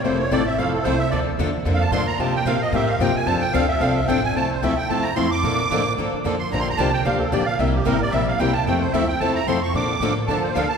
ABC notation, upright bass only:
X:1
M:4/4
L:1/8
Q:"Swing" 1/4=223
K:F
V:1 name="Upright bass" clef=bass
F,,,2 A,,,2 F,,,2 C,,2 | D,,2 E,,2 F,,2 A,, z | C,2 B,,2 A,,2 G,, z | F,, z D,,2 C,,2 A,,,2 |
C,,2 D,,2 E,,2 F,,2 | B,,2 A,,2 G,, z F,,2 | B,,,2 C,,2 D,,2 B,,,2 | C,,2 A,,,2 B,,,2 C,,2 |
F,,2 D,,2 E,,2 F,,2 | B,,2 A,,2 F,,2 D,,2 |]